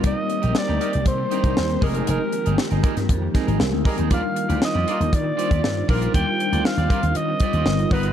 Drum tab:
HH |x-xx--xxx-xx-xox|x-xx-xxxx-xx--ox|x-xx--xxx-xx--ox|x-xx-xxxx-xx-xox|
SD |----o-------o---|----o--o--o-o---|----o-------o---|----o-------o---|
BD |o-------o--o--o-|------o-o-o---o-|o-------o--o--o-|o-----o---o---o-|